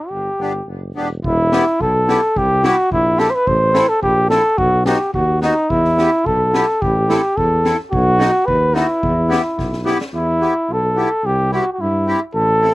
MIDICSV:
0, 0, Header, 1, 5, 480
1, 0, Start_track
1, 0, Key_signature, 1, "minor"
1, 0, Tempo, 562324
1, 94, Time_signature, 2, 2, 24, 8
1, 2015, Tempo, 555042
1, 10991, End_track
2, 0, Start_track
2, 0, Title_t, "Trumpet"
2, 0, Program_c, 0, 56
2, 0, Note_on_c, 0, 62, 63
2, 74, Note_on_c, 0, 67, 70
2, 87, Note_off_c, 0, 62, 0
2, 565, Note_off_c, 0, 67, 0
2, 1069, Note_on_c, 0, 64, 79
2, 1547, Note_on_c, 0, 69, 76
2, 1560, Note_off_c, 0, 64, 0
2, 2028, Note_on_c, 0, 67, 84
2, 2041, Note_off_c, 0, 69, 0
2, 2268, Note_on_c, 0, 66, 89
2, 2281, Note_off_c, 0, 67, 0
2, 2501, Note_off_c, 0, 66, 0
2, 2504, Note_on_c, 0, 64, 84
2, 2737, Note_on_c, 0, 69, 86
2, 2750, Note_off_c, 0, 64, 0
2, 2829, Note_on_c, 0, 72, 64
2, 2842, Note_off_c, 0, 69, 0
2, 2869, Note_on_c, 0, 71, 92
2, 2882, Note_off_c, 0, 72, 0
2, 2980, Note_on_c, 0, 72, 83
2, 2993, Note_off_c, 0, 71, 0
2, 3335, Note_on_c, 0, 69, 78
2, 3348, Note_off_c, 0, 72, 0
2, 3450, Note_off_c, 0, 69, 0
2, 3456, Note_on_c, 0, 67, 82
2, 3679, Note_off_c, 0, 67, 0
2, 3691, Note_on_c, 0, 69, 84
2, 3933, Note_on_c, 0, 66, 89
2, 3946, Note_off_c, 0, 69, 0
2, 4169, Note_off_c, 0, 66, 0
2, 4174, Note_on_c, 0, 67, 65
2, 4397, Note_off_c, 0, 67, 0
2, 4418, Note_on_c, 0, 66, 67
2, 4643, Note_off_c, 0, 66, 0
2, 4662, Note_on_c, 0, 63, 74
2, 4903, Note_on_c, 0, 64, 80
2, 4916, Note_off_c, 0, 63, 0
2, 5390, Note_on_c, 0, 69, 69
2, 5403, Note_off_c, 0, 64, 0
2, 5868, Note_on_c, 0, 67, 75
2, 5881, Note_off_c, 0, 69, 0
2, 6346, Note_on_c, 0, 69, 76
2, 6359, Note_off_c, 0, 67, 0
2, 6702, Note_off_c, 0, 69, 0
2, 6817, Note_on_c, 0, 66, 87
2, 7289, Note_on_c, 0, 71, 72
2, 7302, Note_off_c, 0, 66, 0
2, 7539, Note_on_c, 0, 64, 72
2, 7552, Note_off_c, 0, 71, 0
2, 8501, Note_off_c, 0, 64, 0
2, 8759, Note_on_c, 0, 64, 77
2, 9246, Note_on_c, 0, 69, 66
2, 9259, Note_off_c, 0, 64, 0
2, 9710, Note_on_c, 0, 67, 78
2, 9723, Note_off_c, 0, 69, 0
2, 9946, Note_off_c, 0, 67, 0
2, 9953, Note_on_c, 0, 66, 72
2, 10112, Note_off_c, 0, 66, 0
2, 10120, Note_on_c, 0, 66, 50
2, 10187, Note_on_c, 0, 64, 74
2, 10200, Note_off_c, 0, 66, 0
2, 10541, Note_off_c, 0, 64, 0
2, 10656, Note_on_c, 0, 69, 85
2, 10991, Note_off_c, 0, 69, 0
2, 10991, End_track
3, 0, Start_track
3, 0, Title_t, "Accordion"
3, 0, Program_c, 1, 21
3, 340, Note_on_c, 1, 59, 44
3, 350, Note_on_c, 1, 62, 48
3, 352, Note_on_c, 1, 67, 47
3, 445, Note_off_c, 1, 59, 0
3, 450, Note_off_c, 1, 62, 0
3, 451, Note_off_c, 1, 67, 0
3, 812, Note_on_c, 1, 59, 45
3, 817, Note_on_c, 1, 62, 43
3, 829, Note_on_c, 1, 67, 47
3, 923, Note_off_c, 1, 59, 0
3, 925, Note_off_c, 1, 62, 0
3, 931, Note_off_c, 1, 67, 0
3, 1291, Note_on_c, 1, 64, 45
3, 1292, Note_on_c, 1, 59, 48
3, 1303, Note_on_c, 1, 67, 63
3, 1403, Note_off_c, 1, 59, 0
3, 1403, Note_off_c, 1, 64, 0
3, 1409, Note_off_c, 1, 67, 0
3, 1770, Note_on_c, 1, 59, 48
3, 1775, Note_on_c, 1, 64, 41
3, 1777, Note_on_c, 1, 67, 59
3, 1881, Note_off_c, 1, 59, 0
3, 1883, Note_off_c, 1, 64, 0
3, 1884, Note_off_c, 1, 67, 0
3, 2242, Note_on_c, 1, 60, 61
3, 2248, Note_on_c, 1, 64, 49
3, 2259, Note_on_c, 1, 67, 69
3, 2357, Note_off_c, 1, 60, 0
3, 2360, Note_off_c, 1, 64, 0
3, 2365, Note_off_c, 1, 67, 0
3, 2707, Note_on_c, 1, 60, 44
3, 2716, Note_on_c, 1, 64, 43
3, 2719, Note_on_c, 1, 67, 55
3, 2829, Note_off_c, 1, 60, 0
3, 2833, Note_off_c, 1, 64, 0
3, 2835, Note_off_c, 1, 67, 0
3, 3200, Note_on_c, 1, 64, 50
3, 3202, Note_on_c, 1, 60, 63
3, 3206, Note_on_c, 1, 69, 74
3, 3314, Note_off_c, 1, 64, 0
3, 3315, Note_off_c, 1, 60, 0
3, 3318, Note_off_c, 1, 69, 0
3, 3688, Note_on_c, 1, 60, 52
3, 3694, Note_on_c, 1, 69, 57
3, 3695, Note_on_c, 1, 64, 49
3, 3798, Note_off_c, 1, 60, 0
3, 3801, Note_off_c, 1, 69, 0
3, 3802, Note_off_c, 1, 64, 0
3, 4171, Note_on_c, 1, 59, 48
3, 4177, Note_on_c, 1, 63, 49
3, 4179, Note_on_c, 1, 66, 66
3, 4280, Note_off_c, 1, 59, 0
3, 4283, Note_off_c, 1, 63, 0
3, 4284, Note_off_c, 1, 66, 0
3, 4651, Note_on_c, 1, 59, 56
3, 4655, Note_on_c, 1, 63, 43
3, 4660, Note_on_c, 1, 66, 57
3, 4762, Note_off_c, 1, 59, 0
3, 4764, Note_off_c, 1, 63, 0
3, 4767, Note_off_c, 1, 66, 0
3, 5132, Note_on_c, 1, 59, 52
3, 5140, Note_on_c, 1, 64, 53
3, 5146, Note_on_c, 1, 67, 57
3, 5244, Note_off_c, 1, 59, 0
3, 5248, Note_off_c, 1, 64, 0
3, 5251, Note_off_c, 1, 67, 0
3, 5618, Note_on_c, 1, 59, 58
3, 5625, Note_on_c, 1, 64, 46
3, 5631, Note_on_c, 1, 67, 50
3, 5727, Note_off_c, 1, 59, 0
3, 5731, Note_off_c, 1, 64, 0
3, 5734, Note_off_c, 1, 67, 0
3, 6099, Note_on_c, 1, 60, 64
3, 6104, Note_on_c, 1, 64, 45
3, 6113, Note_on_c, 1, 69, 60
3, 6208, Note_off_c, 1, 60, 0
3, 6210, Note_off_c, 1, 64, 0
3, 6214, Note_off_c, 1, 69, 0
3, 6576, Note_on_c, 1, 60, 53
3, 6588, Note_on_c, 1, 64, 51
3, 6590, Note_on_c, 1, 69, 54
3, 6685, Note_off_c, 1, 60, 0
3, 6691, Note_off_c, 1, 64, 0
3, 6692, Note_off_c, 1, 69, 0
3, 7041, Note_on_c, 1, 59, 59
3, 7048, Note_on_c, 1, 63, 57
3, 7055, Note_on_c, 1, 66, 62
3, 7156, Note_off_c, 1, 59, 0
3, 7159, Note_off_c, 1, 63, 0
3, 7163, Note_off_c, 1, 66, 0
3, 7520, Note_on_c, 1, 59, 51
3, 7524, Note_on_c, 1, 63, 53
3, 7534, Note_on_c, 1, 66, 55
3, 7635, Note_off_c, 1, 59, 0
3, 7637, Note_off_c, 1, 63, 0
3, 7642, Note_off_c, 1, 66, 0
3, 7998, Note_on_c, 1, 59, 54
3, 8008, Note_on_c, 1, 64, 58
3, 8012, Note_on_c, 1, 67, 62
3, 8115, Note_off_c, 1, 59, 0
3, 8120, Note_off_c, 1, 64, 0
3, 8122, Note_off_c, 1, 67, 0
3, 8487, Note_on_c, 1, 59, 56
3, 8489, Note_on_c, 1, 64, 47
3, 8496, Note_on_c, 1, 67, 71
3, 8601, Note_off_c, 1, 59, 0
3, 8602, Note_off_c, 1, 64, 0
3, 8605, Note_off_c, 1, 67, 0
3, 8967, Note_on_c, 1, 59, 54
3, 8974, Note_on_c, 1, 64, 46
3, 8982, Note_on_c, 1, 67, 51
3, 9082, Note_off_c, 1, 59, 0
3, 9085, Note_off_c, 1, 64, 0
3, 9089, Note_off_c, 1, 67, 0
3, 9446, Note_on_c, 1, 59, 49
3, 9454, Note_on_c, 1, 64, 38
3, 9462, Note_on_c, 1, 67, 57
3, 9561, Note_off_c, 1, 59, 0
3, 9565, Note_off_c, 1, 64, 0
3, 9569, Note_off_c, 1, 67, 0
3, 9931, Note_on_c, 1, 60, 56
3, 9934, Note_on_c, 1, 64, 49
3, 9943, Note_on_c, 1, 67, 56
3, 10042, Note_off_c, 1, 60, 0
3, 10044, Note_off_c, 1, 64, 0
3, 10048, Note_off_c, 1, 67, 0
3, 10406, Note_on_c, 1, 60, 45
3, 10410, Note_on_c, 1, 64, 46
3, 10419, Note_on_c, 1, 67, 57
3, 10518, Note_off_c, 1, 60, 0
3, 10520, Note_off_c, 1, 64, 0
3, 10525, Note_off_c, 1, 67, 0
3, 10878, Note_on_c, 1, 60, 55
3, 10882, Note_on_c, 1, 64, 45
3, 10894, Note_on_c, 1, 69, 58
3, 10991, Note_off_c, 1, 60, 0
3, 10991, Note_off_c, 1, 64, 0
3, 10991, Note_off_c, 1, 69, 0
3, 10991, End_track
4, 0, Start_track
4, 0, Title_t, "Tuba"
4, 0, Program_c, 2, 58
4, 90, Note_on_c, 2, 31, 54
4, 248, Note_off_c, 2, 31, 0
4, 326, Note_on_c, 2, 31, 64
4, 545, Note_off_c, 2, 31, 0
4, 562, Note_on_c, 2, 30, 60
4, 787, Note_off_c, 2, 30, 0
4, 809, Note_on_c, 2, 28, 67
4, 1028, Note_off_c, 2, 28, 0
4, 1062, Note_on_c, 2, 28, 91
4, 1373, Note_off_c, 2, 28, 0
4, 1538, Note_on_c, 2, 35, 73
4, 1848, Note_off_c, 2, 35, 0
4, 2018, Note_on_c, 2, 36, 85
4, 2329, Note_off_c, 2, 36, 0
4, 2497, Note_on_c, 2, 34, 77
4, 2808, Note_off_c, 2, 34, 0
4, 2974, Note_on_c, 2, 33, 95
4, 3285, Note_off_c, 2, 33, 0
4, 3456, Note_on_c, 2, 34, 86
4, 3766, Note_off_c, 2, 34, 0
4, 3935, Note_on_c, 2, 35, 90
4, 4247, Note_off_c, 2, 35, 0
4, 4415, Note_on_c, 2, 39, 82
4, 4729, Note_off_c, 2, 39, 0
4, 4904, Note_on_c, 2, 40, 86
4, 5215, Note_off_c, 2, 40, 0
4, 5387, Note_on_c, 2, 35, 78
4, 5697, Note_off_c, 2, 35, 0
4, 5874, Note_on_c, 2, 33, 90
4, 6181, Note_off_c, 2, 33, 0
4, 6350, Note_on_c, 2, 40, 86
4, 6657, Note_off_c, 2, 40, 0
4, 6829, Note_on_c, 2, 35, 103
4, 7135, Note_off_c, 2, 35, 0
4, 7306, Note_on_c, 2, 39, 88
4, 7614, Note_off_c, 2, 39, 0
4, 7780, Note_on_c, 2, 40, 89
4, 8091, Note_off_c, 2, 40, 0
4, 8262, Note_on_c, 2, 35, 66
4, 8573, Note_off_c, 2, 35, 0
4, 8726, Note_on_c, 2, 40, 76
4, 9043, Note_off_c, 2, 40, 0
4, 9217, Note_on_c, 2, 35, 79
4, 9530, Note_off_c, 2, 35, 0
4, 9687, Note_on_c, 2, 36, 88
4, 10002, Note_off_c, 2, 36, 0
4, 10167, Note_on_c, 2, 43, 82
4, 10480, Note_off_c, 2, 43, 0
4, 10647, Note_on_c, 2, 33, 92
4, 10959, Note_off_c, 2, 33, 0
4, 10991, End_track
5, 0, Start_track
5, 0, Title_t, "Drums"
5, 1061, Note_on_c, 9, 36, 55
5, 1147, Note_off_c, 9, 36, 0
5, 1302, Note_on_c, 9, 38, 70
5, 1388, Note_off_c, 9, 38, 0
5, 1542, Note_on_c, 9, 36, 44
5, 1627, Note_off_c, 9, 36, 0
5, 1784, Note_on_c, 9, 38, 64
5, 1870, Note_off_c, 9, 38, 0
5, 2018, Note_on_c, 9, 36, 64
5, 2105, Note_off_c, 9, 36, 0
5, 2258, Note_on_c, 9, 38, 65
5, 2344, Note_off_c, 9, 38, 0
5, 2496, Note_on_c, 9, 36, 54
5, 2583, Note_off_c, 9, 36, 0
5, 2736, Note_on_c, 9, 38, 54
5, 2822, Note_off_c, 9, 38, 0
5, 2976, Note_on_c, 9, 36, 61
5, 3063, Note_off_c, 9, 36, 0
5, 3215, Note_on_c, 9, 38, 65
5, 3301, Note_off_c, 9, 38, 0
5, 3456, Note_on_c, 9, 36, 48
5, 3543, Note_off_c, 9, 36, 0
5, 3696, Note_on_c, 9, 38, 64
5, 3782, Note_off_c, 9, 38, 0
5, 3936, Note_on_c, 9, 36, 60
5, 4023, Note_off_c, 9, 36, 0
5, 4176, Note_on_c, 9, 38, 74
5, 4262, Note_off_c, 9, 38, 0
5, 4419, Note_on_c, 9, 36, 52
5, 4505, Note_off_c, 9, 36, 0
5, 4661, Note_on_c, 9, 38, 54
5, 4748, Note_off_c, 9, 38, 0
5, 4905, Note_on_c, 9, 36, 62
5, 4992, Note_off_c, 9, 36, 0
5, 5029, Note_on_c, 9, 38, 18
5, 5115, Note_off_c, 9, 38, 0
5, 5149, Note_on_c, 9, 38, 58
5, 5235, Note_off_c, 9, 38, 0
5, 5390, Note_on_c, 9, 36, 52
5, 5476, Note_off_c, 9, 36, 0
5, 5632, Note_on_c, 9, 38, 69
5, 5718, Note_off_c, 9, 38, 0
5, 5872, Note_on_c, 9, 36, 70
5, 5958, Note_off_c, 9, 36, 0
5, 6114, Note_on_c, 9, 38, 64
5, 6201, Note_off_c, 9, 38, 0
5, 6352, Note_on_c, 9, 36, 55
5, 6438, Note_off_c, 9, 36, 0
5, 6592, Note_on_c, 9, 38, 51
5, 6678, Note_off_c, 9, 38, 0
5, 6829, Note_on_c, 9, 36, 70
5, 6916, Note_off_c, 9, 36, 0
5, 7074, Note_on_c, 9, 38, 72
5, 7161, Note_off_c, 9, 38, 0
5, 7307, Note_on_c, 9, 36, 52
5, 7393, Note_off_c, 9, 36, 0
5, 7548, Note_on_c, 9, 38, 64
5, 7635, Note_off_c, 9, 38, 0
5, 7785, Note_on_c, 9, 36, 66
5, 7871, Note_off_c, 9, 36, 0
5, 8032, Note_on_c, 9, 38, 71
5, 8118, Note_off_c, 9, 38, 0
5, 8265, Note_on_c, 9, 36, 52
5, 8267, Note_on_c, 9, 38, 34
5, 8352, Note_off_c, 9, 36, 0
5, 8354, Note_off_c, 9, 38, 0
5, 8390, Note_on_c, 9, 38, 37
5, 8476, Note_off_c, 9, 38, 0
5, 8507, Note_on_c, 9, 38, 51
5, 8594, Note_off_c, 9, 38, 0
5, 8631, Note_on_c, 9, 38, 64
5, 8718, Note_off_c, 9, 38, 0
5, 10991, End_track
0, 0, End_of_file